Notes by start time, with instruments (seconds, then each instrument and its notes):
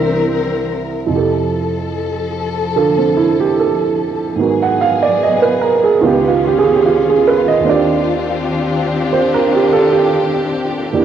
Already playing: upright piano C2 C3 D4 E4 A#4 E5, string section E3 C4 A#4
1.07 upright piano F2 C3, string section F3 A4
1.12 upright piano E4 G4
1.17 upright piano A4
2.76 upright piano D3 F4 A4
2.98 upright piano C4
3.17 upright piano E4
3.40 upright piano G4
3.60 upright piano A4
4.36 upright piano G#2 D#3 B3, string section B3
4.40 string section F#3 G#4, upright piano F#4 A#4
4.62 upright piano F#5
4.81 upright piano F5
5.02 upright piano D5
5.23 upright piano D#5
5.42 upright piano B4
5.61 upright piano A#4
5.84 upright piano G#4
6.01 upright piano C#2 C#3 B3 D#4 F4, string section D#3 C#4 F4
6.07 upright piano G4
6.28 upright piano F4
6.48 upright piano G4
6.58 upright piano G#4
6.75 upright piano G4
6.86 upright piano F4
7.09 upright piano G#4
7.28 upright piano B4
7.48 upright piano D#5
7.60 upright piano D#2 D#3
7.64 upright piano C4 D4, string section C4 D4 G4
7.69 upright piano F4 G4 D5
9.12 upright piano C5
9.34 upright piano A#4
9.56 upright piano G4
9.73 upright piano A4
9.92 upright piano G4
10.90 upright piano E2 E3, string section E3 D4
10.94 upright piano A#3 D4 G4